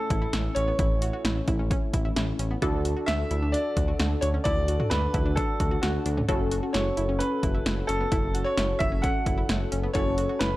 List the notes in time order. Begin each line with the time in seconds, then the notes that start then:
Already playing: A3 C#4 E4 A4
0.10 A1 E4, kick, closed hi-hat
0.22 E4
0.33 A1 E4, snare, closed hi-hat
0.55 A1 C#4 C#5, closed hi-hat
0.68 B3
0.79 A1 E4, kick, closed hi-hat
1.02 F#4, closed hi-hat
1.13 F#4
1.25 A1 E4, snare, closed hi-hat
1.48 A1 E4, kick, closed hi-hat
1.59 C#4
1.71 C#4, kick, closed hi-hat
1.94 A1 E4, kick, closed hi-hat
2.05 E4
2.16 A1 E4, snare, closed hi-hat
2.39 A1 C#4, closed hi-hat
2.51 B3
2.62 D2 D4 E4 F#4 A4, kick, closed hi-hat
2.85 F#4, closed hi-hat
2.97 F#4
3.06 D2 E4 E5, snare, closed hi-hat
3.31 D2 E4, closed hi-hat
3.42 D4
3.52 D4 D5, closed hi-hat
3.77 D2 F#4, kick, closed hi-hat
3.88 F#4
3.99 D2 F#4, snare, closed hi-hat
4.21 D2 D4 C#5, closed hi-hat
4.34 C#4
4.44 D2 E4 D5, kick, closed hi-hat
4.68 F#4, closed hi-hat
4.80 F#4, mid tom
4.90 D2 E4 B4, snare, closed hi-hat
5.14 D2 E4, kick, closed hi-hat
5.25 D4
5.36 D4 A4, kick, closed hi-hat
5.60 D2 F#4, kick, closed hi-hat
5.71 F#4
5.82 D2 F#4, snare, closed hi-hat
6.06 D2 D4, closed hi-hat
6.17 C#4, mid tom
6.29 F#1 C#4 E4 F#4 A4, kick, closed hi-hat
6.51 F#4, closed hi-hat
6.63 F#4
6.73 F#1 E4 C#5, snare, closed hi-hat
6.97 F#1 E4, closed hi-hat
7.09 C#4
7.19 C#4 B4, closed hi-hat
7.43 F#1 E4, kick, closed hi-hat
7.55 E4
7.66 F#1 E4, snare, closed hi-hat
7.87 F#1 C#4 A4, closed hi-hat
8.00 B3
8.12 F#1 E4, kick, closed hi-hat
8.35 F#4, closed hi-hat
8.44 F#4 C#5
8.57 F#1 E4, snare, closed hi-hat
8.79 F#1 E4 E5, kick, closed hi-hat
8.92 C#4
9.02 C#4 F#5, kick, closed hi-hat
9.26 F#1 E4, kick, closed hi-hat
9.38 E4
9.49 F#1 E4, snare, closed hi-hat
9.72 F#1 C#4, closed hi-hat
9.83 B3
9.93 F#1 C#4 E4 F#4 A4 C#5, kick, closed hi-hat
10.18 F#4, closed hi-hat
10.29 F#4
10.39 F#1 E4 B4, snare, closed hi-hat